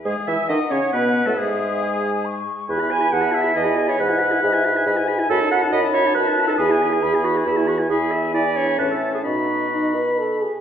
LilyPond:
<<
  \new Staff \with { instrumentName = "Oboe" } { \time 3/4 \key cis \minor \tempo 4 = 137 gis'8 e''8 dis''8 cis''8 b'8. a'16 | gis'2~ gis'8 r8 | gis''16 b''16 gis''16 b''16 gis''16 b''16 gis''16 b''16 gis''16 b''16 gis''16 b''16 | b''16 gis''16 b''16 gis''16 b''16 gis''16 b''16 gis''16 b''16 gis''16 b''16 gis''16 |
\key e \major b''16 a''16 b''16 a''16 b''16 a''16 b''16 a''16 b''16 a''16 b''16 a''16 | b''16 gis''16 b''16 gis''16 b''16 gis''16 b''16 gis''16 b''16 gis''16 b''16 gis''16 | b''4 b''4 a''4 | b''2~ b''8 r8 | }
  \new Staff \with { instrumentName = "Flute" } { \time 3/4 \key cis \minor gis''4 fis''2 | e''4 gis''4 cis'''4 | b''4 a''4 gis''4 | fis''4 e''4 gis''4 |
\key e \major a''4 b''4 a''4 | gis''4 b''4. r8 | gis''2 e''4 | dis''2~ dis''8 r8 | }
  \new Staff \with { instrumentName = "Clarinet" } { \time 3/4 \key cis \minor gis'8 e''8 dis''8 cis''8 b'8. a'16 | gis'2~ gis'8 r8 | b'8 gis''8 fis''8 e''8 dis''8. cis''16 | b'2~ b'8 r8 |
\key e \major a'8 fis''8 dis''8 cis''8 b'8. a'16 | gis'4. fis'8 e'8 fis'8 | gis'8 e''8 d''8 cis''8 b'16 a'8 gis'16 | fis'2~ fis'8 r8 | }
  \new Staff \with { instrumentName = "French horn" } { \time 3/4 \key cis \minor gis8 e'8 dis'8 cis'8 b8. a16 | gis2~ gis8 r8 | gis'16 e'16 gis'16 e'16 gis'16 e'16 gis'16 e'16 gis'16 e'16 gis'16 e'16 | gis'16 e'16 gis'16 e'16 gis'16 e'16 gis'16 e'16 gis'16 e'16 gis'16 e'16 |
\key e \major fis'16 dis'16 fis'16 dis'16 fis'16 dis'16 fis'16 dis'16 fis'16 dis'16 fis'16 dis'16 | gis'16 e'16 gis'16 e'16 gis'16 e'16 gis'16 e'16 gis'16 e'16 gis'16 e'16 | e'4 e'8 d'8 cis'4 | dis'4 dis'8 b'8 a'8 gis'8 | }
  \new Staff \with { instrumentName = "Bassoon" } { \clef bass \time 3/4 \key cis \minor gis,8 e8 dis8 cis8 b,8. a,16 | gis,2~ gis,8 r8 | e,4 e,4 e,4 | gis,4 gis,4 gis,4 |
\key e \major fis,4 fis,4 fis,4 | e,4 e,4 e,4 | e,2 a,4 | b,2~ b,8 r8 | }
>>